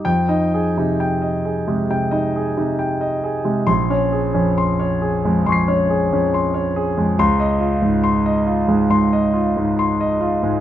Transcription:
<<
  \new Staff \with { instrumentName = "Grand piano" } { \time 4/4 \key f \minor \tempo 4 = 68 << { g''8 r2. r8 | c'''8 r4. <aes'' des''' c''''>2 | c'''8 r2. r8 | } \\ { r16 ees''16 aes'16 c16 g''16 ees''16 aes'16 c16 g''16 ees''16 aes'16 c16 g''16 ees''16 aes'16 c16 | r16 des''16 aes'16 f,16 c'''16 des''16 aes'16 f,16 c'''16 des''16 aes'16 f,16 c'''16 des''16 aes'16 f,16 | r16 ees''16 f'16 aes,16 c'''16 ees''16 f'16 aes,16 c'''16 ees''16 f'16 aes,16 c'''16 ees''16 f'16 aes,16 | } >> }
  \new Staff \with { instrumentName = "Grand piano" } { \clef bass \time 4/4 \key f \minor f,16 ees'8 ees'8 r8 aes16 c16 ees'8 ees'8 r8 aes16 | bes,,16 des'8 des'8 r8 aes16 f,16 des'8 des'8 r8 aes16 | des,4.~ des,16 aes16 aes,8 r4 r16 aes16 | }
>>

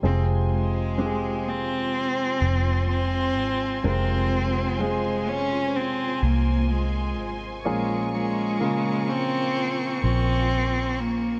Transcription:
<<
  \new Staff \with { instrumentName = "String section" } { \time 4/4 \key f \minor \tempo 4 = 63 << { <f' c'' c'''>1~ | <f' c'' c'''>1 | <f' bes' des'''>1 | } \\ { aes''1~ | aes''1~ | aes''1 | } >> }
  \new Staff \with { instrumentName = "Grand piano" } { \time 4/4 \key f \minor <aes c' f' aes'>4 <aes c' f' g' aes'>2 r4 | <aes c' f' bes'>4 <aes f' aes' c''>2 r4 | <bes des' f' aes'>4 <des bes f' aes'>2 r4 | }
  \new Staff \with { instrumentName = "Grand piano" } { \clef bass \time 4/4 \key f \minor c4. r2 r8 | c4. r2 r8 | <bes, f>4. r2 r8 | }
  \new Staff \with { instrumentName = "Cello" } { \time 4/4 \key f \minor c'8 aes4 c'4. c'4 | c'4 aes8 des'8 c'8 bes8 aes8. r16 | aes8 aes4 c'4 c'4 bes8 | }
  \new Staff \with { instrumentName = "Fingered electric bass" } { \clef bass \time 4/4 \key f \minor f,,2~ f,,8 f,,4 aes,,8 | f,,2~ f,,8 c,4 aes,,8 | bes,,2~ bes,,8 bes,,4. | }
>>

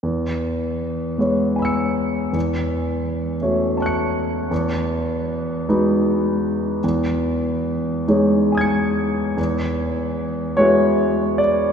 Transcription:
\new Staff \with { instrumentName = "Grand piano" } { \time 6/8 \key e \major \tempo 4. = 51 << { r2 <gis'' b'' e''' cis''''>4 | r2 <a'' cis''' fis''' cis''''>4 | r2. | r2 <gis'' dis''' gis''' cis''''>4 |
r4. cis''4 d''8 | } \\ { e,4. <gis b e' cis''>4. | e,4. <a cis' fis' cis''>4. | e,4. <gis dis' fis' b'>4. | e,4. <gis dis' gis' cis''>4. |
e,4. <gis e' fis' b'>4. | } >> }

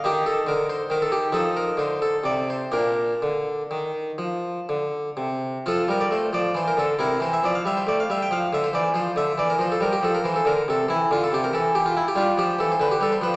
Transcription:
<<
  \new Staff \with { instrumentName = "Harpsichord" } { \time 12/8 \key bes \major \tempo 4. = 91 << { g'8 a'8 bes'8 c''8 bes'16 a'16 g'8 a'8 bes'8 c''8 a'8 d''8 c''8 | bes'1~ bes'8 r4. | \key f \major a'8 bes'16 d''16 c''8 d''8 c''16 bes'16 a'8 bes'8 c''16 e''16 d''16 f''16 e''16 c''16 d''16 f''16 e''16 g''16 | f''8 e''16 c''16 d''8 c''8 e''8 d''16 bes'16 c''16 a'16 bes'16 g'16 a'16 bes'16 c''16 a'16 bes'8 a'8 |
e'8 f'16 a'16 g'16 bes'16 a'8 g'16 f'16 e'16 g'16 f'8 g'8 a'16 c''16 b'16 g'16 a'16 c''16 b'16 r16 | } \\ { ees'2. ees'2. | d'1. | f'2. e'2. | r1. |
r2. d'2. | } >> }
  \new Staff \with { instrumentName = "Harpsichord" } { \clef bass \time 12/8 \key bes \major ees4 d4 ees4 f4 d4 c4 | bes,4 d4 ees4 f4 d4 c4 | \key f \major f8 g8 a8 f8 e8 d8 c8 e8 f8 g8 a8 g8 | f8 d8 e8 f8 d8 e8 f8 g8 f8 e8 d8 c8 |
e8 d8 c8 e4. g8 f8 e8 d8 g8 f8 | }
>>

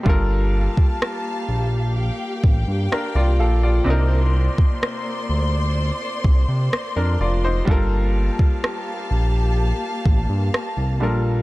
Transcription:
<<
  \new Staff \with { instrumentName = "String section" } { \time 4/4 \key g \minor \tempo 4 = 63 << { a''2 g''2 | c'''1 | a''1 | } \\ { <bes g' f''>1 | <c'' d''>1 | <bes g' f''>1 | } >> }
  \new Staff \with { instrumentName = "Grand piano" } { \time 4/4 \key g \minor << { r2. <d' bes'>16 <f' d''>16 <a' f''>16 <f' d''>16~ | <f' d''>16 r2. <d' bes'>16 <f' d''>16 <ees' c''>16~ | <ees' c''>16 r2. r8. | } \\ { <g d' f' a' bes'>1 | <c c' d' ees' bes'>1 | <g d' f' a' bes'>2.~ <g d' f' a' bes'>8 <g d' f' a' bes'>8 | } >> }
  \new Staff \with { instrumentName = "Analog synth bass" } { \clef bass \time 4/4 \key g \minor g,,8. r8. bes,,8. r16 a,,16 g,16 r16 c,16 bes,,8 | c,8. r8. d,8. r16 c,16 c16 r16 f,16 f,,8 | g,,8. r8. bes,,8. r16 a,,16 g,16 r16 c,16 bes,,8 | }
  \new DrumStaff \with { instrumentName = "Drums" } \drummode { \time 4/4 bd8. bd16 ss4 r8 bd8 ss4 | r8. bd16 ss4 r8 bd8 ss4 | bd8. bd16 ss4 r8 bd8 ss4 | }
>>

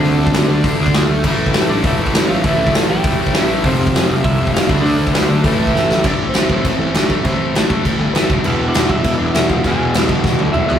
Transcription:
<<
  \new Staff \with { instrumentName = "Lead electric guitar" } { \time 4/4 \key a \minor \tempo 4 = 200 <c' c''>4. r2 r8 | r4. <d' d''>8 <e' e''>4. <f' f''>8 | <e' e''>4 r8 <g' g''>2 r8 | <c' c''>4. r8 <e' e''>4 <f' f''>8 <e' e''>8 |
<d' d''>8 <d' d''>8 <b b'>8 <a a'>4. <e' e''>4 | <d' d''>8. <c' c''>8. <c' c''>4. <d' d''>4 | <c' c''>4 <a a'>2 <b b'>4 | <b b'>8. <d' d''>8. <e' e''>8 <e' e''>8 <d' d''>8 <e' e''>8 <f' f''>8 |
<gis' gis''>4 r2 <e' e''>4 | }
  \new Staff \with { instrumentName = "Distorted electric guitar" } { \clef bass \time 4/4 \key a \minor <d a d'>2 <d a d'>8 <d a d'>4 r8 | <a, e a>2~ <a, e a>8 <a, e a>8 <a, e a>4 | <a, e a>2~ <a, e a>8 <a, e a>8 <a, e a>4 | <f, c f>2~ <f, c f>8 <f, c f>8 <f, c f>8 <d a d'>8~ |
<d a d'>2 <a, e a>2 | <a, e a>4 <a, e a>8 <a, e a>8 <a, e a>4 <a, e a>8 <a, e a>8 | <a, e a>4 <a, e a>8 <a, e a>8 <a, e a>4 <a, e a>8 <e, b, e>8 | <e, b, e>4 <e, b, e>8 <e, b, e>8 <e, b, e>4 <e, b, e>8 <e, b, e>8 |
<e, b, e>4 <e, b, e>8 <e, b, e>8 <e, b, e>4 <e, b, e>8 <e, b, e>8 | }
  \new Staff \with { instrumentName = "Overdriven electric guitar" } { \clef bass \time 4/4 \key a \minor <d a d'>2. <d a d'>8 r8 | <a, e a>2.~ <a, e a>8 <a, e a>8 | <a, e a>2.~ <a, e a>8 <a, e a>8 | <f, c f>2.~ <f, c f>8 <d a d'>8~ |
<d a d'>2 <a, e a>2 | <a, e a>4 <a, e a>8 <a, e a>8 <a, e a>4 <a, e a>8 <a, e a>8 | <a, e a>4 <a, e a>8 <a, e a>8 <a, e a>4 <a, e a>8 <e, b, e>8 | <e, b, e>4 <e, b, e>8 <e, b, e>8 <e, b, e>4 <e, b, e>8 <e, b, e>8 |
<e, b, e>4 <e, b, e>8 <e, b, e>8 <e, b, e>4 <e, b, e>8 <e, b, e>8 | }
  \new Staff \with { instrumentName = "Overdriven electric guitar" } { \clef bass \time 4/4 \key a \minor <d a d'>4. <d a d'>2 r8 | <a, e a>2 <a, e a>2 | <a, e a>2 <a, e a>2 | <f, c f>2 <f, c f>4. <d a d'>8~ |
<d a d'>4. <d a d'>8 <a, e a>2 | r1 | r1 | <e, b, e>1 |
<e, b, e>1 | }
  \new Staff \with { instrumentName = "Picked electric bass" } { \clef bass \time 4/4 \key a \minor d,8 d,8 d,8 d,8 a,,8 d,8 d,8 d,8 | a,,8 a,,8 a,,8 a,,8 e,,8 a,,8 a,,8 a,,8 | a,,8 a,,8 a,,8 a,,8 e,,8 a,,8 a,,8 a,,8 | f,,8 f,,8 f,,8 f,,8 c,8 f,,8 f,,8 d,8 |
d,8 d,8 d,8 d,8 a,,8 a,,8 a,,8 a,,8 | a,,8 a,,8 a,,8 a,,8 a,,8 a,,8 a,,8 a,,8 | a,,8 a,,8 a,,4 a,,8 g,,8 a,,8 e,,8 | e,,8 e,,8 e,,8 e,,8 e,,8 e,,8 e,,8 e,,8 |
e,,8 e,,8 e,,4 e,,8 d,8 e,,8 e,8 | }
  \new DrumStaff \with { instrumentName = "Drums" } \drummode { \time 4/4 hho8. bd16 <hho sn>4 <hho bd>8. bd16 <hho sn>4 | <cymc bd>8. bd16 <hho sn>4 <hho bd>8. bd16 <hho sn>4 | <hho bd>8. bd16 <hho sn>4 <hho bd>8. bd16 <hho sn>4 | <hho bd>8. bd16 <hho sn>4 <hho bd>8. bd16 <hho sn>8 bd8 |
hho8. bd16 <hho sn>4 <hho bd>8. bd16 sn8 sn8 | <cymc bd>4 <cymc sn>8 bd8 <cymc bd>4 <cymc sn>8 bd8 | <cymc bd>4 <cymc sn>8 bd8 <cymc bd>4 <cymc sn>8 bd8 | cymc4 <cymc sn>8 bd8 <cymc bd>4 <cymc sn>8 bd8 |
<cymc bd>4 <cymc sn>8 bd8 <bd sn>8 tommh8 toml8 tomfh8 | }
>>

